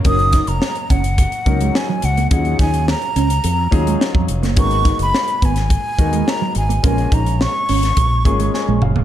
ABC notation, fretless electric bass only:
X:1
M:4/4
L:1/16
Q:1/4=106
K:D#m
V:1 name="Fretless electric bass" clef=bass
F,,,3 E,,, z2 F,,,3 z C,,2 z2 C,,2 | D,,2 D,,3 z C,,2 E,,2 D,,2 z E,, E,,, F,,, | G,,,3 F,,, z2 G,,,3 z D,,2 z2 G,,,2 | A,,,2 A,,,3 z G,,,2 A,,,2 G,,,2 z A,,, F,,, E,,, |]